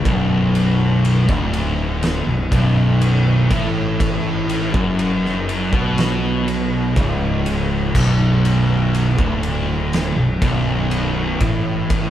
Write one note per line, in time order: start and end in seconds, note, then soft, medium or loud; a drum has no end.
0.05 1.24 B0 loud
0.05 1.27 B1 loud
0.05 kick loud
0.05 ride loud
0.55 ride medium
1.05 ride loud
1.28 2.23 D1 loud
1.28 2.26 D2 loud
1.28 kick loud
1.28 snare soft
1.53 ride medium
2.03 snare loud
2.03 ride loud
2.26 2.49 B0 medium
2.26 2.50 B1 medium
2.51 3.46 B0 loud
2.51 3.50 B1 loud
2.51 kick loud
2.51 ride medium
3.01 ride loud
3.50 4.70 A1 loud
3.50 4.72 A2 loud
3.50 kick loud
3.50 ride medium
4.00 kick loud
4.00 ride loud
4.49 ride medium
4.73 5.68 F#1 medium
4.73 5.71 F#2 loud
4.73 kick loud
4.99 ride loud
5.25 snare soft
5.49 ride medium
5.72 6.92 B1 loud
5.72 6.94 B2 loud
5.72 kick loud
5.98 snare loud
5.98 ride loud
6.48 ride medium
6.96 7.91 C#1 loud
6.96 7.93 C#2 loud
6.96 kick loud
6.96 ride loud
7.46 ride medium
7.94 9.14 B0 loud
7.94 9.16 B1 loud
7.94 kick loud
7.94 crash loud
8.45 ride medium
8.94 ride medium
9.18 10.13 D1 medium
9.18 10.15 D2 loud
9.18 kick loud
9.43 ride medium
9.93 snare loud
9.93 ride loud
10.16 10.39 B0 medium
10.16 10.40 B1 medium
10.41 11.36 B0 medium
10.41 11.39 B1 loud
10.41 kick loud
10.41 ride medium
10.91 ride loud
11.40 12.10 A1 medium
11.40 12.10 A2 loud
11.40 kick loud
11.40 ride medium
11.90 kick loud
11.90 ride loud